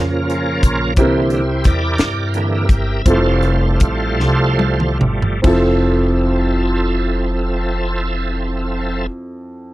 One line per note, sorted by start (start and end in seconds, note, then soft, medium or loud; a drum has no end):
0.00 0.59 F2 medium
0.00 0.98 A#2 medium
0.00 0.93 C#3 soft
0.00 0.93 F3 soft
0.00 0.92 A#3 medium
0.00 0.94 A#3 medium
0.00 0.93 C#4 medium
0.00 0.93 F4 medium
0.00 0.94 F4 medium
0.00 0.93 A#4 medium
0.00 0.94 A#4 medium
0.30 closed hi-hat soft
0.63 0.97 A#1 medium
0.63 kick medium
0.63 closed hi-hat medium
0.96 1.61 C2 medium
0.96 1.96 C3 medium
0.96 1.42 D3 soft
0.96 1.42 E3 soft
0.96 1.43 A#3 medium
0.96 3.02 C4 medium
0.96 3.02 E4 soft
0.96 1.96 E4 medium
0.96 1.65 G4 medium
0.96 3.02 G4 medium
0.96 3.03 A#4 medium
0.96 1.68 C5 medium
0.96 kick medium
0.96 closed hi-hat medium
1.30 closed hi-hat soft
1.64 1.97 E2 medium
1.64 2.34 G4 medium
1.64 2.34 A#4 medium
1.64 2.29 D5 loud
1.64 kick medium
1.64 closed hi-hat medium
1.98 2.65 G2 medium
1.98 snare loud
1.98 closed hi-hat medium
2.27 2.34 F5 medium
2.34 2.66 D3 soft
2.34 2.66 E3 soft
2.34 2.66 A#3 soft
2.34 3.02 G4 medium
2.34 3.02 A#4 medium
2.34 3.08 E5 medium
2.34 closed hi-hat soft
2.69 3.02 G1 medium
2.69 kick medium
2.69 closed hi-hat medium
3.05 3.76 F1 medium
3.05 5.40 F3 soft
3.05 5.41 G3 soft
3.05 5.41 A3 medium
3.05 5.40 C4 medium
3.05 5.40 E4 medium
3.05 5.41 F4 soft
3.05 4.98 A4 medium
3.05 5.41 A4 medium
3.05 4.98 C5 medium
3.05 4.98 F5 medium
3.05 kick medium
3.05 closed hi-hat medium
3.43 closed hi-hat soft
3.80 4.19 A1 medium
3.80 kick medium
3.80 closed hi-hat medium
4.19 4.96 C2 medium
4.19 snare soft
4.59 high tom medium
4.80 mid tom medium
5.01 5.40 G1 medium
5.01 mid tom medium
5.22 floor tom medium
5.42 9.05 F1 medium
5.42 9.05 F2 medium
5.42 9.06 F3 medium
5.42 9.03 C4 medium
5.42 9.06 C4 medium
5.42 9.04 E4 medium
5.42 9.06 F4 medium
5.42 9.07 A4 medium
5.42 9.07 E5 medium
5.42 kick medium
5.42 crash medium
5.47 9.08 A4 medium